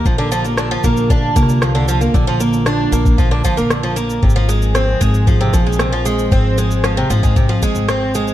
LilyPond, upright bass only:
\new Staff \with { instrumentName = "Upright bass" } { \clef bass \time 4/4 \key bes \mixolydian \tempo 4 = 115 bes,,4. bes,,4 c,4. | bes,,4. bes,,4 r16 bes,,4~ bes,,16 | aes,,4. aes,,4 bes,,4. | aes,,4. aes,,4 r16 aes,,4~ aes,,16 | }